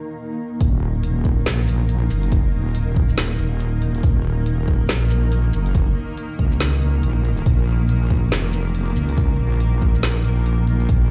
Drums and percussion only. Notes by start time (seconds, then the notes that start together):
0.61 kick, closed hi-hat
1.04 closed hi-hat
1.25 kick
1.46 snare, closed hi-hat
1.59 closed hi-hat
1.68 closed hi-hat, shaker
1.89 closed hi-hat
2.10 closed hi-hat, shaker
2.23 closed hi-hat
2.32 kick, closed hi-hat
2.75 closed hi-hat
2.96 kick
3.09 shaker
3.18 snare, closed hi-hat
3.31 closed hi-hat
3.39 closed hi-hat
3.60 closed hi-hat
3.82 closed hi-hat
3.95 closed hi-hat
4.03 kick, closed hi-hat
4.46 closed hi-hat
4.68 kick
4.89 snare, closed hi-hat
5.02 closed hi-hat
5.11 closed hi-hat, shaker
5.32 closed hi-hat
5.53 closed hi-hat, shaker
5.66 closed hi-hat
5.75 kick, closed hi-hat
6.18 closed hi-hat
6.39 kick
6.52 shaker
6.60 snare, closed hi-hat
6.73 closed hi-hat
6.82 closed hi-hat
7.03 closed hi-hat
7.25 closed hi-hat
7.38 closed hi-hat
7.46 kick, closed hi-hat
7.89 closed hi-hat
8.11 kick
8.32 snare, closed hi-hat
8.45 closed hi-hat
8.53 closed hi-hat, shaker
8.75 closed hi-hat
8.96 closed hi-hat, shaker
9.09 closed hi-hat
9.18 kick, closed hi-hat
9.60 closed hi-hat
9.82 kick
9.95 shaker
10.03 snare, closed hi-hat
10.16 closed hi-hat
10.25 closed hi-hat
10.46 closed hi-hat
10.67 closed hi-hat
10.80 closed hi-hat
10.89 kick, closed hi-hat